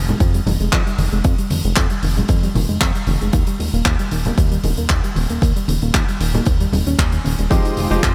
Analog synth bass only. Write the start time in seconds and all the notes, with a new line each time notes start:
Already playing: F1
0.20 F2
0.46 F1
0.60 F1
0.73 F2
0.98 F1
1.12 F1
1.25 F2
1.51 F1
1.65 F1
1.77 F2
2.03 F1
2.29 F2
2.55 F1
2.69 F1
2.81 F2
3.07 F1
3.21 F1
3.33 D#2
3.60 D#1
3.73 D#1
3.86 D#2
4.11 D#1
4.38 D#2
4.64 D#1
4.78 D#1
4.90 D#2
5.16 D#1
5.30 D#1
5.42 D#2
5.68 D#1
5.82 D#1
5.94 D#2
6.20 D#1
6.47 D#2
6.72 D#1
6.86 D#1
6.99 D#2
7.25 D#1
7.39 D#1
7.51 F2
7.77 F1
7.91 F1
8.03 F2